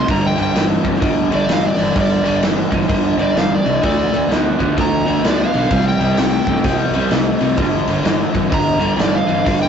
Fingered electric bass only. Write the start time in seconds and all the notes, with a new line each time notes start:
0.09 G1
0.38 G1
0.56 G1
0.85 G1
1.02 G1
1.49 G1
1.79 G1
1.96 G1
2.26 G1
2.42 G1
2.72 G1
2.89 G1
3.37 G1
3.66 C2
3.84 D2
4.13 D2
4.30 D2
4.61 D2
4.78 D2
5.24 D2
5.54 B1
5.71 C2
5.99 C2
6.19 C2
6.46 C2
6.64 C2
7.12 C2
7.41 C2
7.58 G1
7.88 G1
8.03 G1
8.35 G1
8.52 G1
8.99 G1
9.29 G1
9.47 G1